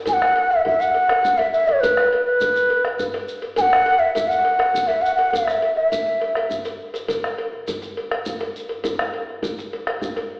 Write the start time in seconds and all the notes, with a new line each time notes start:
0.06 G#5, bombo low, cowbell, djembe slap, djembe bass, shekere
0.13 F#5
0.22 bombo rim, djembe slap
0.36 cowbell
0.51 E5, djembe tone
0.65 E5, bombo low, cowbell, djembe slap, djembe bass
0.80 F#5, djembe slap, shekere
0.94 cowbell
1.09 bombo rim, cowbell, djembe slap, djembe tone
1.23 bombo rim, bombo low, djembe bass, shekere
1.38 E5, bombo rim, cowbell, djembe slap
1.53 E5, shekere
1.67 C#5, cowbell, djembe tone
1.81 B4, bombo low, cowbell, djembe slap, djembe bass, shekere
1.97 bombo rim, djembe slap
2.13 cowbell
2.25 B4, djembe tone
2.40 bombo low, cowbell, djembe slap, djembe bass, shekere
2.56 djembe slap, shekere
2.70 cowbell
2.85 bombo rim, cowbell, djembe slap, djembe tone
2.99 bombo rim, bombo low, djembe bass, shekere
3.14 bombo rim, cowbell, djembe slap
3.28 shekere
3.42 cowbell, djembe tone
3.56 G#5, bombo low, cowbell, djembe slap, djembe bass, shekere
3.61 F#5
3.73 bombo rim, djembe slap
3.86 cowbell
3.99 E5, djembe tone
4.14 E5, bombo low, cowbell, djembe slap, djembe bass, shekere
4.28 F#5, djembe slap, shekere
4.45 cowbell
4.59 bombo rim, cowbell, djembe slap, djembe tone
4.74 bombo rim, bombo low, djembe bass, shekere
4.87 E5, bombo rim, cowbell, djembe slap
5.02 F#5, shekere
5.15 F#5, cowbell, djembe tone
5.31 E5, bombo low, cowbell, djembe bass
5.35 shekere
5.48 bombo rim, djembe slap, shekere
5.62 cowbell
5.75 E5, bombo rim, djembe slap, djembe tone
5.92 bombo low, cowbell, shekere
6.06 djembe slap
6.21 bombo rim, cowbell
6.35 bombo rim, cowbell, djembe slap, djembe tone
6.50 bombo low, djembe slap, djembe bass, shekere
6.65 cowbell, djembe slap, shekere
6.80 djembe slap
6.94 bombo rim, cowbell, djembe slap, djembe tone, shekere
7.08 bombo low, cowbell, djembe slap, djembe bass, shekere
7.24 bombo rim, djembe slap
7.38 cowbell
7.53 djembe tone
7.68 bombo low, cowbell, djembe slap, djembe bass, shekere
7.82 djembe slap, shekere
7.97 cowbell
8.11 bombo rim, cowbell, djembe slap, djembe tone
8.26 bombo rim, bombo low, djembe bass, shekere
8.40 bombo rim, cowbell, djembe slap
8.56 shekere
8.69 cowbell, djembe tone
8.84 bombo low, cowbell, djembe slap, djembe bass, shekere
8.99 bombo rim, djembe slap
9.14 cowbell
9.29 djembe tone
9.42 bombo low, cowbell, djembe slap, djembe bass, shekere
9.59 djembe slap, shekere
9.73 cowbell
9.87 bombo rim, cowbell, djembe slap, djembe tone
10.01 bombo rim, bombo low, djembe bass, shekere
10.16 bombo rim, cowbell, djembe slap